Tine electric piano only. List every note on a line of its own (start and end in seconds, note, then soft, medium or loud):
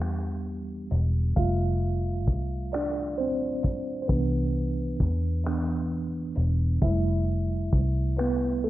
0.00 1.39 E3 soft
0.00 0.88 G3 medium
0.00 1.38 B3 soft
0.00 1.38 D4 medium
0.00 0.87 G4 medium
1.36 2.69 G3 soft
1.36 2.70 A3 soft
1.36 2.25 F4 medium
1.36 2.70 E5 medium
1.36 2.23 F5 medium
2.73 3.17 D4 medium
2.73 3.20 D5 loud
3.18 3.99 C4 medium
3.18 3.98 C5 medium
4.02 4.09 C5 medium
4.08 4.70 E3 medium
4.08 5.46 B3 medium
4.08 4.71 D4 medium
4.08 6.32 B4 medium
5.47 5.88 E3 soft
5.47 5.88 B3 soft
5.47 5.88 D4 medium
6.82 7.43 G3 medium
6.82 7.43 A3 soft
6.82 8.16 E4 medium
6.82 8.23 E5 medium
8.18 8.62 B3 medium
8.18 8.65 B4 medium
8.64 8.70 A3 medium
8.64 8.70 A4 medium